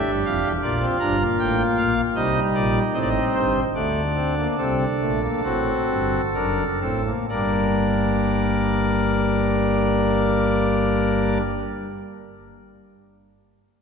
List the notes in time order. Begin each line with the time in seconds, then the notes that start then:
Already playing: D4 G4 E5
0.06 G1 G2
0.25 F1 F2 F5
0.43 E1 E2
0.62 A#1 A#2 A#3 F4 D5
0.80 C4
0.99 G1 G2 D4 A#5
1.20 A#3
1.39 A1 A2 G5
1.77 A#1 A#2 F5
2.15 C2 C3 G3 D#4 D#5
2.55 A#1 A#2 D5
2.94 A1 A2 C4 D#5
3.02 D5
3.09 D#5
3.34 G1 G2 C5
3.75 D2 D3 A3 D4 D5
4.16 C4
4.37 A#3
4.58 C2 C3 C4 A4
5.01 A#1 A#2 A3
5.22 A#3
5.44 A1 A2 C4 F#4
5.88 G1 G2
6.35 F#1 F#2 D4 A#4
6.81 A1 A2 C4 A4
7.06 A#3
7.29 G1 G2 G3 A#3 D4 A#4 D5